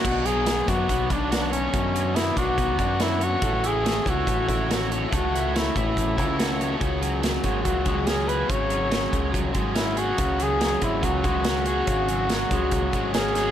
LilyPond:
<<
  \new Staff \with { instrumentName = "Trumpet" } { \time 4/4 \key b \dorian \tempo 4 = 142 fis'8 gis'4 fis'4 d'4 cis'8~ | cis'4 e'8 fis'4. e'8 fis'8~ | fis'8 gis'4 fis'2 r8 | fis'4 e'8 e'2 r8 |
r4. fis'8 fis'4 gis'8 b'8 | cis''2 r4 e'8 fis'8~ | fis'8 gis'4 e'8 fis'2~ | fis'2. gis'4 | }
  \new Staff \with { instrumentName = "Distorted electric guitar" } { \time 4/4 \key b \dorian <b, fis b d' fis'>8 <b d' fis'>8 <b, fis b d' fis'>4. <b d' fis'>8 <fis b d' fis'>8 <b d' fis'>8 | <b, fis b d' fis'>8 <b d' fis'>8 <b, fis b d' fis'>4. <b d' fis'>8 <fis b d' fis'>8 <b d' fis'>8 | <a cis' fis' a'>8 <cis' fis' a'>8 <a cis' fis' a'>4. <cis' fis' a'>8 <a cis' fis' a'>8 <cis' fis' a'>8 | <a cis' fis' a'>8 <cis' fis' a'>8 <a cis' fis' a'>4. <cis' fis' a'>8 <a cis' fis' a'>8 <cis' fis' a'>8 |
<cis fis cis' fis' gis'>8 <cis' fis' gis'>8 <cis fis cis' fis' gis'>4. <cis' fis' gis'>8 <fis cis' fis' gis'>8 <cis' fis' gis'>8 | <cis fis cis' fis' gis'>8 <cis' fis' gis'>8 <cis fis cis' fis' gis'>4. <cis' fis' gis'>8 <fis cis' fis' gis'>8 <cis' fis' gis'>8 | <cis fis cis' fis' gis'>8 <cis' fis' gis'>8 <cis fis cis' fis' gis'>4. <cis' fis' gis'>8 <fis cis' fis' gis'>8 <cis' fis' gis'>8 | <cis fis cis' fis' gis'>8 <cis' fis' gis'>8 <cis fis cis' fis' gis'>4. <cis' fis' gis'>8 <fis cis' fis' gis'>8 <cis' fis' gis'>8 | }
  \new Staff \with { instrumentName = "Overdriven electric guitar" } { \time 4/4 \key b \dorian b,8 fis8 b8 d'8 b8 d'8 fis'8 cis''8 | b,8 fis8 b8 d'8 b8 d'8 fis'8 cis''8 | a8 e'8 a8 e'8 a8 e'8 fis'8 cis''8 | a8 e'8 a8 e'8 a8 e'8 fis'8 cis''8 |
cis8 fis8 fis8 gis8 fis8 gis8 cis'8 gis'8 | cis8 fis8 fis8 gis8 fis8 gis8 cis'8 gis'8 | cis8 fis8 fis8 gis8 fis8 gis8 cis'8 gis'8 | cis8 fis8 fis8 gis8 fis8 gis8 cis'8 gis'8 | }
  \new Staff \with { instrumentName = "Picked electric bass" } { \clef bass \time 4/4 \key b \dorian b,,4. fis,8 b,,8 b,,4. | fis,4. b,,8 b,,8 fis,4. | a,,4. cis,8 a,,8 a,,4. | cis,4. a,,8 a,,8 cis,4. |
cis,4. gis,,8 cis,8 cis,4. | gis,,4. cis,8 cis,8 gis,,4. | cis,4. gis,,8 cis,8 cis,4. | gis,,4. cis,8 cis,8 gis,,4. | }
  \new DrumStaff \with { instrumentName = "Drums" } \drummode { \time 4/4 <cymc bd>8 hh8 <hh sn>8 <hh bd>8 <hh bd>8 <hh bd>8 <hh sn>8 hh8 | <hh bd>8 hh8 <hh sn>8 <hh bd>8 <hh bd>8 <hh bd>8 <hh sn>8 hh8 | <hh bd>8 hh8 <hh sn>8 <hh bd>8 <hh bd>8 <hh bd>8 <hh sn>8 hh8 | <hh bd>8 hh8 <hh sn>8 <hh bd>8 <hh bd>8 <hh bd>8 <hh sn>8 hh8 |
<hh bd>8 hh8 <hh sn>8 <hh bd>8 <hh bd>8 <hh bd>8 <hh sn>8 hh8 | <hh bd>8 hh8 <hh sn>8 <hh bd>8 <hh bd>8 <hh bd>8 <hh sn>8 hh8 | <hh bd>8 hh8 <hh sn>8 <hh bd>8 <hh bd>8 <hh bd>8 <hh sn>8 hh8 | <hh bd>8 hh8 <hh sn>8 <hh bd>8 <hh bd>8 <hh bd>8 <hh sn>8 <hh sn>8 | }
>>